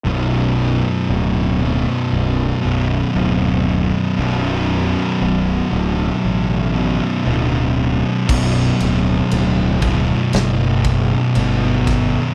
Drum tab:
CC |--------|--------|x-------|
RD |--------|--------|-xxxxxxx|
SD |--------|--------|----o--o|
BD |--------|--------|o--o-o-o|